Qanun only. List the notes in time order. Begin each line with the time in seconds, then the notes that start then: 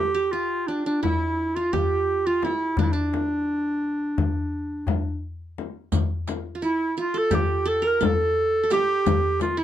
Already playing: G4 A4
0.15 G4
0.33 F4
0.68 D4
0.86 D4
1.03 E4
1.56 F4
1.73 G4
2.27 F4
2.45 E4
2.79 D4
2.93 D4
6.55 F4
6.62 E4
6.98 F4
7.14 A4
7.31 G4
7.66 A4
7.82 A#4
8.01 A4
8.63 A4
8.71 G4
9.57 E4